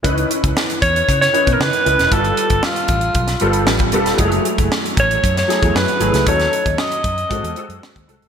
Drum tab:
HH |xxxx-xxxxxxx-xxx|xxxx-xxxxxxx-xxx|xxxx-xxxxxxx-xxx|xxxx-xxxxxxx-xxx|
SD |----o----o--o--o|----o----o--o--o|----o----oo-o--o|-o--o-------o---|
BD |o--o--o-o--o----|o--o--o-o----o--|o--o--o-o--o----|o--o--o-o----o--|